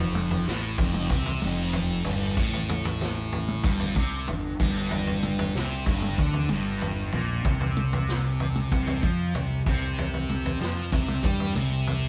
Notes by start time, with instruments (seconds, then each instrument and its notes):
Already playing: fingered electric bass F1, distorted electric guitar F2
0.15 mid tom
0.31 floor tom
0.46 fingered electric bass A1, distorted electric guitar A2, snare
0.78 fingered electric bass F1, distorted electric guitar F2, kick, floor tom
0.94 mid tom
1.10 fingered electric bass C2, distorted electric guitar C3, kick, floor tom
1.26 floor tom
1.41 fingered electric bass F1, distorted electric guitar F2, mid tom
1.73 floor tom
2.04 fingered electric bass G1, distorted electric guitar G2, floor tom
2.36 fingered electric bass A1, distorted electric guitar A2, kick, floor tom
2.53 floor tom
2.69 floor tom, mid tom
2.85 floor tom
3.01 snare, floor tom
3.33 floor tom
3.48 mid tom
3.63 fingered electric bass G1, distorted electric guitar G2, kick, floor tom
3.80 floor tom
3.96 fingered electric bass C2, distorted electric guitar C3, kick, mid tom
4.28 fingered electric bass G1, distorted electric guitar G2, floor tom
4.59 fingered electric bass G1, distorted electric guitar G2, kick, floor tom
4.91 floor tom
5.07 floor tom
5.23 mid tom
5.39 floor tom
5.55 fingered electric bass C2, distorted electric guitar C3, snare
5.86 fingered electric bass G1, distorted electric guitar G2, kick, floor tom
6.02 mid tom
6.18 fingered electric bass D2, distorted electric guitar D3, kick, floor tom
6.33 floor tom
6.49 fingered electric bass G1, distorted electric guitar G2, mid tom
6.81 floor tom
7.12 fingered electric bass A#1, distorted electric guitar A#2, floor tom
7.45 fingered electric bass C2, distorted electric guitar C3, kick, floor tom
7.61 floor tom
7.77 mid tom
7.93 floor tom
8.09 snare
8.40 floor tom
8.56 mid tom
8.72 fingered electric bass C2, distorted electric guitar C3, kick, floor tom
8.87 floor tom
9.03 fingered electric bass F2, distorted electric guitar F3, kick, mid tom
9.34 fingered electric bass C2, distorted electric guitar C3, floor tom
9.66 fingered electric bass C2, distorted electric guitar C3, kick, floor tom
9.98 floor tom
10.14 floor tom
10.29 mid tom
10.46 floor tom
10.61 fingered electric bass F2, distorted electric guitar F3, snare
10.92 fingered electric bass C2, distorted electric guitar C3, kick, floor tom
11.08 mid tom
11.23 fingered electric bass G2, distorted electric guitar G3, kick, floor tom
11.40 floor tom
11.55 fingered electric bass C2, distorted electric guitar C3, mid tom
11.87 floor tom